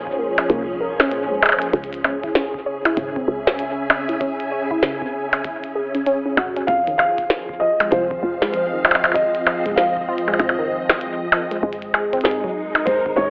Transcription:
Already playing: fm bass A#1, string machine A#2 F3 C#4 D#4 G#4 C5
0.07 kick
0.19 fm bass G#1, synth pluck A#3
0.38 synth pluck C#4, closed hi-hat, percussion blips
0.50 fm bass C2, synth pluck A#3, closed hi-hat
0.81 synth pluck A#4
1.00 synth pluck C#4, snare, closed hi-hat, percussion blips
1.12 synth pluck A#2, closed hi-hat
1.31 synth pluck G#3
1.43 percussion blips
1.46 percussion blips
1.49 percussion blips
1.52 percussion blips
1.59 closed hi-hat, percussion blips
1.73 fm bass C#2, string machine C#3, kick, closed hi-hat
1.84 closed hi-hat
1.93 closed hi-hat
2.04 synth pluck C#4, percussion blips
2.23 synth pluck E4, string machine G#5, kick, closed hi-hat
2.35 synth pluck C#4, snare, closed hi-hat
2.45 string machine E5
2.54 kick
2.66 fm bass G#1, synth pluck C#5
2.85 synth pluck E4, closed hi-hat, percussion blips
2.97 fm bass G#1, synth pluck C#3, closed hi-hat
3.16 synth pluck C4, kick
3.28 fm bass C#2
3.47 snare, closed hi-hat
3.59 closed hi-hat
3.90 synth pluck C#4, percussion blips
4.09 synth pluck E4, closed hi-hat
4.21 synth pluck C#4, kick, closed hi-hat
4.40 closed hi-hat
4.52 synth pluck C#5
4.71 synth pluck E4, kick
4.83 synth pluck C#3, snare, closed hi-hat
5.02 synth pluck C4, kick
5.14 fm bass G#1
5.33 closed hi-hat, percussion blips
5.44 kick, closed hi-hat
5.64 closed hi-hat
5.75 synth pluck G#4
5.95 synth pluck C#4, closed hi-hat
6.06 synth pluck C#4, closed hi-hat
6.26 synth pluck C#4
6.37 fm bass G#1, synth pluck F#4, kick, percussion blips
6.56 synth pluck C#4, closed hi-hat
6.67 fm bass F1, synth pluck F2, string machine F3, felt piano F5, kick, closed hi-hat
6.87 synth pluck D#3, closed hi-hat
6.98 felt piano F5, percussion blips
7.03 string machine C4
7.18 kick, closed hi-hat
7.30 snare, closed hi-hat
7.49 kick
7.60 fm bass D#1, synth pluck F3, felt piano D#5
7.70 string machine F5
7.80 synth pluck G#3, string machine D#5, closed hi-hat, percussion blips
7.91 fm bass C2, synth pluck F3, felt piano C5, closed hi-hat
8.11 kick
8.23 fm bass F1, synth pluck F4
8.42 synth pluck G#3, snare, closed hi-hat
8.52 synth pluck F2, felt piano C5, closed hi-hat
8.73 synth pluck D#3
8.85 percussion blips
8.91 percussion blips
8.95 percussion blips
9.04 closed hi-hat, percussion blips
9.12 felt piano D#5, kick, closed hi-hat, percussion blips
9.35 closed hi-hat
9.47 synth pluck F3, percussion blips
9.66 synth pluck G#3, kick, closed hi-hat
9.69 kick
9.72 kick
9.75 synth pluck F3, felt piano F5, kick, snare, closed hi-hat
9.97 kick
10.08 fm bass D#1, synth pluck F4
10.18 closed hi-hat
10.28 synth pluck G#3, percussion blips
10.34 percussion blips
10.39 fm bass G#1, synth pluck F2, closed hi-hat, percussion blips
10.49 percussion blips
10.59 synth pluck D#3
10.90 snare, closed hi-hat, percussion blips
11.01 closed hi-hat
11.32 synth pluck F3, percussion blips
11.51 synth pluck G#3, closed hi-hat
11.63 fm bass G#1, synth pluck G#3, string machine G#3, kick
11.73 closed hi-hat
11.82 string machine D#4, closed hi-hat
11.94 synth pluck G#4, percussion blips
12.13 synth pluck C4, kick, closed hi-hat
12.21 synth pluck G#2, felt piano G#4, snare, closed hi-hat
12.25 closed hi-hat
12.31 closed hi-hat
12.38 string machine A#4
12.44 synth pluck F#3, kick
12.56 fm bass F#1
12.71 string machine C#4
12.75 percussion blips
12.85 fm bass D#1, felt piano C5, closed hi-hat
12.95 string machine F#5
13.06 kick
13.16 fm bass G#1, synth pluck G#3, felt piano C#5

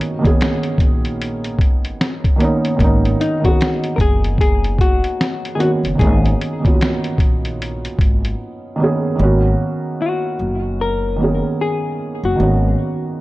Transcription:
Already playing: felt piano D#3 A#3 B3 C#4 D#4 F#4, hollow-body jazz guitar G#4
0.01 closed hi-hat
0.19 felt piano D#3 A#3 B3
0.25 felt piano C#4 G#4, kick, closed hi-hat
0.41 snare, closed hi-hat
0.63 closed hi-hat
0.78 upright bass A#1, kick, closed hi-hat
1.05 closed hi-hat
1.22 closed hi-hat
1.44 closed hi-hat
1.59 upright bass G#1, kick, closed hi-hat
1.85 closed hi-hat
2.01 snare, closed hi-hat
2.24 kick, closed hi-hat
2.36 felt piano D#3 A#3 B3
2.40 felt piano C#4 D#4, closed hi-hat
2.65 closed hi-hat
2.76 upright bass G#1, felt piano D#3 A#3 B3, kick
2.80 felt piano C#4 D#4, closed hi-hat
3.05 closed hi-hat
3.21 hollow-body jazz guitar D#4, closed hi-hat
3.40 felt piano D#3 A#3 B3
3.45 felt piano C#4 G#4, hollow-body jazz guitar F#4, kick, closed hi-hat
3.61 snare, closed hi-hat
3.84 closed hi-hat
3.96 upright bass F#1, hollow-body jazz guitar A#4, kick, closed hi-hat
4.01 hollow-body jazz guitar G#4
4.24 closed hi-hat
4.38 hollow-body jazz guitar G#4, kick, closed hi-hat
4.64 closed hi-hat
4.79 hollow-body jazz guitar F#4, kick, closed hi-hat
5.04 closed hi-hat
5.21 snare, closed hi-hat
5.45 closed hi-hat
5.55 felt piano D#3 A#3 B3, hollow-body jazz guitar G#4
5.60 felt piano C#4 F#4, hollow-body jazz guitar F#4, closed hi-hat
5.84 upright bass F#1, closed hi-hat
5.95 upright bass G#1, felt piano D#3 A#3 B3, kick
5.99 felt piano C#4 D#4, hollow-body jazz guitar G#4, closed hi-hat
6.26 closed hi-hat
6.41 closed hi-hat
6.60 felt piano D#3 A#3 B3
6.65 felt piano C#4 F4, kick, closed hi-hat
6.74 felt piano F#4
6.81 snare, closed hi-hat
7.04 closed hi-hat
7.18 upright bass A#1, kick, closed hi-hat
7.45 closed hi-hat
7.62 closed hi-hat
7.85 closed hi-hat
7.99 upright bass G#1, kick, closed hi-hat
8.25 closed hi-hat
8.76 felt piano D#3 A#3 B3
8.82 felt piano C#4 G#4
9.16 upright bass G#1, felt piano D#3 A#3
9.20 felt piano B3 C#4 F#4
10.02 hollow-body jazz guitar F#4
10.39 upright bass F#1
10.81 hollow-body jazz guitar A#4
11.16 felt piano D#3 A#3 B3
11.22 felt piano C#4 G#4
11.61 hollow-body jazz guitar G#4
12.23 upright bass F#1, hollow-body jazz guitar F#4
12.36 upright bass G#1, felt piano D#3 A#3 B3
12.41 felt piano C#4 F#4

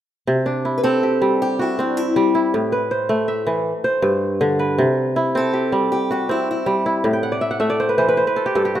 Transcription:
0.27 kora C3
0.46 kora D4
0.65 kora E4
0.78 steel-string acoustic guitar B4
0.84 kora C4, steel-string acoustic guitar A4
1.03 kora G4
1.22 kora G3
1.42 steel-string acoustic guitar G4
1.59 steel-string acoustic guitar E4, kora F#4
1.79 kora C4, steel-string acoustic guitar D4
1.97 steel-string acoustic guitar E4
2.16 kora G3
2.35 kora E4
2.54 kora A2
2.72 kora B4
2.91 kora C5
3.09 kora A3
3.28 kora E5
3.47 kora E3
3.84 kora C5
4.02 kora G2
4.41 kora D3
4.59 kora B4
4.78 kora C3
5.16 kora E4
5.35 kora C4, steel-string acoustic guitar A4
5.54 kora G4
5.72 kora G3
5.92 steel-string acoustic guitar G4
6.11 kora F#4, steel-string acoustic guitar G4
6.29 kora C4, steel-string acoustic guitar E4
6.51 steel-string acoustic guitar E4
6.66 kora G3
6.86 kora E4
7.04 kora A2
7.13 kora G5
7.23 kora F#5
7.32 kora D5
7.41 kora E5
7.51 kora F#5
7.60 kora A3 E5
7.70 kora D5
7.80 kora C5
7.89 kora B4
7.98 kora E3 C5
8.09 kora B4
8.17 kora C5
8.27 kora B4
8.36 kora A4
8.46 kora G4
8.55 kora G2 A4
8.65 kora G4
8.75 kora F#4

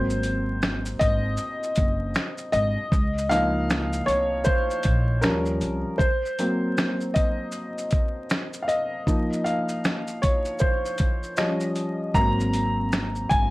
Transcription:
Already playing: upright bass G#1, upright piano F#3 A#3 C4 C5
0.10 shaker
0.23 closed hi-hat, shaker
0.62 finger snap, snare, shaker
0.86 shaker
0.99 upright bass G#1, upright piano D#5, kick, closed hi-hat, shaker
1.37 shaker
1.63 shaker
1.76 upright bass F#1, kick, closed hi-hat, shaker
2.15 finger snap, snare, shaker
2.38 shaker
2.52 upright bass G#1, upright piano D#5, closed hi-hat, shaker
2.92 upright bass C#2, kick, shaker
3.18 shaker
3.29 upright piano F3 A#3 D#4 F5, closed hi-hat, shaker
3.70 finger snap, snare, shaker
3.93 shaker
4.06 upright bass C2, upright piano C#5, closed hi-hat, shaker
4.44 upright piano C5, kick, shaker
4.71 shaker
4.83 upright bass A#1, kick, closed hi-hat, shaker
5.21 upright bass D#2, upright piano F3 G3 C#4 A#4, finger snap, snare, shaker
5.46 shaker
5.61 upright bass C2, closed hi-hat, shaker
5.98 upright piano C5, kick, shaker
6.26 shaker
6.39 upright piano F#3 A#3 C4, closed hi-hat, shaker
6.78 finger snap, snare, shaker
7.01 shaker
7.14 upright piano D#5, kick, closed hi-hat, shaker
7.52 shaker
7.78 shaker
7.91 kick, closed hi-hat, shaker
8.30 finger snap, snare, shaker
8.53 shaker
8.62 upright piano F5
8.68 upright piano D#5, closed hi-hat, shaker
9.07 upright piano F3 A#3 D#4, kick, shaker
9.33 shaker
9.44 upright piano F5, closed hi-hat, shaker
9.69 shaker
9.85 finger snap, snare, shaker
10.08 shaker
10.22 upright piano C#5, kick, closed hi-hat, shaker
10.45 shaker
10.59 upright piano C5, kick, shaker
10.86 shaker
10.98 kick, closed hi-hat, shaker
11.23 shaker
11.37 upright piano F3 G3 C#4 D#5, finger snap, snare, shaker
11.61 shaker
11.76 closed hi-hat, shaker
12.14 upright bass G#1, upright piano F#3 A#3 C4 A#5, kick, shaker
12.40 shaker
12.54 closed hi-hat, shaker
12.93 finger snap, snare, shaker
13.16 shaker
13.29 upright bass G#1, upright piano G#5, kick, closed hi-hat, shaker

